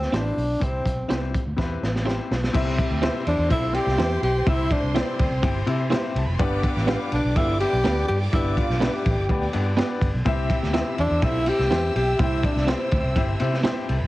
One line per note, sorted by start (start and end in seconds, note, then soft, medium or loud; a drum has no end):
0.00 0.18 C4 loud
0.00 snare soft
0.12 0.30 A1 medium
0.12 0.40 C4 medium
0.12 0.22 C4 medium
0.12 0.40 E4 medium
0.12 0.23 E4 medium
0.12 0.40 G4 medium
0.12 0.23 G4 medium
0.12 0.41 C5 medium
0.12 0.23 C5 medium
0.12 snare loud
0.12 closed hi-hat medium
0.17 0.66 D4 loud
0.37 0.54 B1 medium
0.37 open hi-hat soft
0.60 0.79 C2 loud
0.60 1.30 C3 medium
0.60 0.88 C4 medium
0.60 0.89 E4 medium
0.60 0.89 G4 medium
0.60 0.89 C5 medium
0.60 kick loud
0.60 closed hi-hat medium
0.64 1.11 C4 medium
0.85 1.03 B1 medium
0.85 kick medium
0.85 closed hi-hat medium
1.08 1.36 C2 medium
1.08 1.37 C4 medium
1.08 1.19 C4 medium
1.08 1.37 E4 medium
1.08 1.19 E4 medium
1.08 1.37 G4 medium
1.08 1.20 G4 medium
1.08 1.38 C5 medium
1.08 1.20 C5 medium
1.08 snare loud
1.08 closed hi-hat medium
1.34 kick medium
1.34 closed hi-hat medium
1.46 1.55 D2 medium
1.56 1.76 E2 medium
1.56 1.85 C4 medium
1.56 1.85 E4 medium
1.56 1.86 G4 medium
1.56 1.86 B4 medium
1.56 kick medium
1.56 snare medium
1.82 2.18 A1 medium
1.82 snare medium
1.96 snare medium
2.05 2.33 C4 medium
2.05 2.16 C4 medium
2.05 2.34 E4 medium
2.05 2.16 E4 medium
2.05 2.34 G4 medium
2.05 2.16 G4 medium
2.05 2.34 C5 medium
2.05 2.17 C5 medium
2.05 snare medium
2.31 2.48 B1 medium
2.31 snare medium
2.44 snare medium
2.53 2.81 C2 loud
2.53 3.23 C3 medium
2.53 2.82 C4 loud
2.53 3.23 C4 loud
2.53 3.23 E4 loud
2.53 2.82 E4 loud
2.53 2.82 G4 loud
2.53 3.23 G4 loud
2.53 2.83 C5 loud
2.53 5.84 C5 medium
2.53 2.83 E5 loud
2.53 5.84 C6 loud
2.53 kick loud
2.53 crash loud
2.79 kick medium
2.79 ride medium
2.91 3.08 D2 medium
3.02 3.12 C4 medium
3.02 3.30 C4 medium
3.02 3.30 E4 medium
3.02 3.13 E4 medium
3.02 3.13 G4 medium
3.02 3.31 G4 medium
3.02 3.31 C5 medium
3.02 3.13 C5 medium
3.02 3.31 E5 loud
3.02 snare loud
3.02 ride medium
3.26 3.36 E2 medium
3.26 3.50 D4 medium
3.26 3.46 E4 medium
3.26 3.46 G4 medium
3.26 3.46 C5 medium
3.26 3.49 D5 medium
3.26 ride medium
3.38 3.47 E2 medium
3.49 3.77 B1 medium
3.49 3.64 C4 medium
3.49 3.70 D4 medium
3.49 3.64 E4 medium
3.49 3.77 E4 loud
3.49 3.71 F4 medium
3.49 3.64 G4 medium
3.49 3.71 A4 loud
3.49 3.65 C5 medium
3.49 3.73 E5 medium
3.49 3.65 E5 medium
3.49 kick medium
3.49 ride medium
3.73 3.88 C4 medium
3.73 3.95 C4 medium
3.73 3.88 E4 medium
3.73 3.95 E4 medium
3.73 3.88 G4 medium
3.73 4.23 G4 loud
3.73 3.95 G4 loud
3.73 3.89 C5 medium
3.73 3.89 D5 medium
3.73 4.20 G5 loud
3.73 ride medium
3.86 3.96 C2 medium
3.86 snare soft
3.98 4.16 E2 medium
3.98 4.27 C4 medium
3.98 4.09 C4 medium
3.98 4.09 E4 medium
3.98 4.27 E4 medium
3.98 4.27 G4 medium
3.98 4.09 G4 medium
3.98 4.27 C5 medium
3.98 4.10 C5 loud
3.98 4.27 E5 medium
3.98 snare loud
3.98 ride medium
4.22 4.40 B1 medium
4.22 4.50 G4 loud
4.22 4.45 G5 medium
4.22 ride medium
4.46 4.73 C2 loud
4.46 5.16 C3 medium
4.46 4.75 C4 loud
4.46 4.75 E4 medium
4.46 4.74 E4 loud
4.46 4.75 G4 medium
4.46 4.75 C5 medium
4.46 4.71 E5 medium
4.46 4.76 E5 loud
4.46 kick loud
4.46 ride medium
4.71 4.98 D4 medium
4.71 4.95 D5 medium
4.71 kick medium
4.71 ride medium
4.82 5.01 C2 medium
4.94 5.23 C4 medium
4.94 5.05 C4 medium
4.94 5.68 C4 medium
4.94 5.23 E4 medium
4.94 5.05 E4 medium
4.94 5.23 G4 medium
4.94 5.06 G4 medium
4.94 5.23 C5 medium
4.94 5.68 C5 medium
4.94 5.06 C5 medium
4.94 5.23 D5 medium
4.94 snare loud
4.94 ride medium
5.19 5.29 D2 loud
5.19 kick medium
5.19 ride medium
5.31 5.40 C2 medium
5.42 5.61 G1 loud
5.42 5.57 C4 medium
5.42 5.57 E4 medium
5.42 5.57 G4 medium
5.42 5.58 C5 medium
5.42 5.58 G5 medium
5.42 kick loud
5.42 ride medium
5.66 5.94 C3 loud
5.66 5.81 C4 medium
5.66 5.81 E4 medium
5.66 5.81 G4 medium
5.66 5.82 C5 medium
5.66 5.82 E5 medium
5.66 ride medium
5.90 6.01 C4 medium
5.90 6.19 C4 medium
5.90 6.19 E4 medium
5.90 6.01 E4 medium
5.90 6.00 E4 medium
5.90 6.20 G4 medium
5.90 6.02 G4 loud
5.90 6.02 C5 medium
5.90 6.20 C5 medium
5.90 6.00 E5 medium
5.90 6.20 E5 medium
5.90 snare loud
5.90 ride medium
6.00 6.08 F4 medium
6.00 6.08 F5 medium
6.09 6.16 G4 medium
6.09 6.17 G5 medium
6.15 6.24 C2 medium
6.15 6.25 A4 medium
6.15 6.24 A5 medium
6.15 ride medium
6.24 6.36 F1 medium
6.24 6.32 B4 medium
6.24 6.32 B5 medium
6.33 6.41 C5 medium
6.33 6.40 C6 loud
6.39 7.08 G2 medium
6.39 6.68 B3 loud
6.39 7.08 B3 loud
6.39 6.68 D4 loud
6.39 7.08 D4 loud
6.39 7.08 G4 loud
6.39 6.68 G4 loud
6.39 6.68 B4 loud
6.39 6.68 D5 loud
6.39 9.98 D5 medium
6.39 9.98 D6 loud
6.39 kick loud
6.39 ride medium
6.63 kick medium
6.63 ride medium
6.76 6.94 A1 loud
6.76 snare soft
6.87 6.98 B3 medium
6.87 7.16 B3 medium
6.87 6.98 D4 medium
6.87 7.16 D4 medium
6.87 7.16 G4 medium
6.87 6.98 G4 medium
6.87 7.16 B4 medium
6.87 6.98 B4 loud
6.87 7.17 F5 loud
6.87 snare loud
6.87 ride medium
7.12 7.21 B1 medium
7.12 7.32 D4 medium
7.12 7.38 D4 medium
7.12 7.32 G4 medium
7.12 7.32 B4 medium
7.12 7.35 D5 medium
7.12 ride medium
7.24 7.33 B1 medium
7.34 7.63 G1 medium
7.34 7.50 B3 medium
7.34 7.55 D4 medium
7.34 7.50 D4 medium
7.34 7.60 E4 loud
7.34 7.55 F4 medium
7.34 7.50 G4 medium
7.34 7.55 A4 loud
7.34 7.51 B4 medium
7.34 7.60 E5 medium
7.34 7.51 F5 medium
7.34 kick medium
7.34 ride medium
7.59 7.79 B3 medium
7.59 7.74 B3 medium
7.59 7.79 D4 medium
7.59 7.74 D4 medium
7.59 7.79 G4 loud
7.59 8.05 G4 loud
7.59 7.75 G4 medium
7.59 7.75 B4 medium
7.59 7.75 E5 medium
7.59 8.05 G5 medium
7.59 ride medium
7.73 7.82 B1 medium
7.84 8.03 D2 loud
7.84 8.12 B3 medium
7.84 7.95 B3 medium
7.84 8.13 D4 medium
7.84 7.95 D4 medium
7.84 8.13 G4 medium
7.84 7.95 G4 medium
7.84 8.13 B4 medium
7.84 7.95 B4 medium
7.84 8.13 D5 medium
7.84 snare loud
7.84 ride medium
8.08 8.27 G2 medium
8.08 8.19 G4 loud
8.08 8.19 G5 medium
8.08 open hi-hat medium
8.08 ride medium
8.31 8.60 G1 loud
8.31 9.02 G2 medium
8.31 8.61 B3 loud
8.31 8.61 D4 medium
8.31 8.59 E4 loud
8.31 8.62 G4 medium
8.31 8.62 B4 medium
8.31 8.62 D5 loud
8.31 8.54 E5 medium
8.31 kick loud
8.31 hi-hat pedal medium
8.31 ride medium
8.56 8.83 F4 medium
8.56 8.81 F5 medium
8.56 kick medium
8.56 ride medium
8.69 8.87 B1 medium
8.69 snare soft
8.80 8.91 B3 medium
8.80 9.09 B3 medium
8.80 9.09 D4 medium
8.80 8.91 D4 medium
8.80 9.09 G4 medium
8.80 8.91 G4 medium
8.80 9.54 G4 medium
8.80 9.09 B4 medium
8.80 8.92 B4 medium
8.80 9.10 E5 medium
8.80 9.53 G5 medium
8.80 snare loud
8.80 ride medium
9.05 9.14 A1 medium
9.05 kick loud
9.05 ride medium
9.19 9.27 G1 medium
9.28 9.47 D2 loud
9.28 9.43 B3 medium
9.28 9.43 D4 medium
9.28 9.43 G4 medium
9.28 9.44 B4 medium
9.28 9.44 D5 medium
9.28 kick medium
9.28 ride medium
9.53 9.81 G2 loud
9.53 9.67 B3 medium
9.53 9.67 D4 medium
9.53 9.68 G4 medium
9.53 9.68 B4 medium
9.53 9.68 D5 medium
9.53 ride medium
9.77 9.87 B3 medium
9.77 10.05 B3 medium
9.77 9.88 D4 loud
9.77 10.06 D4 medium
9.77 9.88 G4 loud
9.77 10.06 G4 medium
9.77 9.88 B4 loud
9.77 10.06 B4 medium
9.77 10.06 D5 medium
9.77 snare loud
9.77 ride medium
10.01 10.10 G1 medium
10.01 kick medium
10.01 ride medium
10.14 10.23 B1 medium
10.25 10.53 C2 loud
10.25 10.95 C3 medium
10.25 10.54 C4 loud
10.25 10.95 C4 loud
10.25 10.54 E4 loud
10.25 10.95 E4 loud
10.25 10.94 G4 loud
10.25 10.54 G4 loud
10.25 10.54 C5 loud
10.25 13.72 E5 medium
10.25 10.55 E5 loud
10.25 13.72 E6 loud
10.25 kick loud
10.25 ride medium
10.50 kick medium
10.50 ride medium
10.63 10.80 D2 medium
10.63 snare soft
10.73 11.02 C4 medium
10.73 10.84 C4 medium
10.73 11.02 E4 medium
10.73 10.84 E4 medium
10.73 10.84 G4 medium
10.73 11.02 G4 medium
10.73 11.03 C5 medium
10.73 10.85 C5 medium
10.73 11.03 E5 medium
10.73 snare loud
10.73 ride medium
10.98 11.07 E2 medium
10.98 11.26 D4 loud
10.98 11.17 E4 medium
10.98 11.18 G4 medium
10.98 11.17 C5 medium
10.98 11.21 D5 medium
10.98 ride medium
11.10 11.19 E2 medium
11.22 11.49 B1 medium
11.22 11.36 C4 medium
11.22 11.42 D4 medium
11.22 11.37 E4 medium
11.22 11.50 E4 loud
11.22 11.42 F4 medium
11.22 11.37 G4 medium
11.22 11.42 A4 loud
11.22 11.37 C5 medium
11.22 11.47 E5 medium
11.22 11.37 E5 medium
11.22 kick medium
11.22 ride medium
11.46 11.66 C4 medium
11.46 11.61 C4 medium
11.46 11.66 E4 medium
11.46 11.61 E4 medium
11.46 11.66 G4 medium
11.46 11.61 G4 medium
11.46 11.96 G4 loud
11.46 11.61 C5 medium
11.46 11.62 E5 medium
11.46 11.94 G5 medium
11.46 ride medium
11.59 11.68 C2 medium
11.59 snare soft
11.71 11.89 E2 loud
11.71 11.81 C4 medium
11.71 11.99 C4 medium
11.71 11.81 E4 medium
11.71 11.99 E4 medium
11.71 11.81 G4 loud
11.71 11.99 G4 medium
11.71 11.81 C5 medium
11.71 12.00 C5 medium
11.71 12.00 E5 medium
11.71 snare loud
11.71 ride medium
11.95 12.13 B1 medium
11.95 12.22 G4 loud
11.95 12.18 G5 medium
11.95 ride medium
12.19 12.46 C2 loud
12.19 12.88 C3 medium
12.19 12.47 C4 medium
12.19 12.47 E4 medium
12.19 12.47 E4 loud
12.19 12.48 G4 medium
12.19 12.48 C5 medium
12.19 12.45 E5 medium
12.19 12.48 G5 loud
12.19 kick loud
12.19 ride medium
12.43 12.71 D4 medium
12.43 12.69 D5 medium
12.43 kick medium
12.43 ride medium
12.56 12.73 C2 medium
12.56 snare soft
12.67 12.77 C4 medium
12.67 12.96 C4 medium
12.67 13.41 C4 medium
12.67 12.78 E4 medium
12.67 12.96 E4 medium
12.67 12.78 G4 medium
12.67 12.96 G4 medium
12.67 12.78 C5 medium
12.67 12.96 C5 medium
12.67 13.41 C5 medium
12.67 12.97 G5 medium
12.67 snare loud
12.67 ride medium
12.91 13.01 D2 medium
12.91 kick loud
12.91 ride medium
13.04 13.13 C2 medium
13.16 13.34 G1 loud
13.16 13.30 C4 medium
13.16 13.30 E4 medium
13.16 13.31 G4 medium
13.16 13.31 C5 medium
13.16 13.31 E5 medium
13.16 kick medium
13.16 ride medium
13.40 13.67 C3 loud
13.40 13.54 C4 medium
13.40 13.54 E4 medium
13.40 13.55 G4 medium
13.40 13.55 C5 medium
13.40 13.55 E5 medium
13.40 ride medium
13.53 snare soft
13.64 13.74 C4 medium
13.64 13.93 C4 medium
13.64 13.74 E4 loud
13.64 13.93 E4 medium
13.64 13.75 G4 loud
13.64 13.93 G4 medium
13.64 13.75 C5 loud
13.64 13.94 C5 medium
13.64 13.94 E5 loud
13.64 snare loud
13.64 ride medium
13.81 13.89 G4 medium
13.81 13.89 G5 medium
13.89 13.98 C2 medium
13.89 13.97 A4 medium
13.89 13.97 A5 medium
13.89 ride medium
13.97 14.05 B4 medium
13.97 14.05 B5 medium
14.01 14.07 F1 medium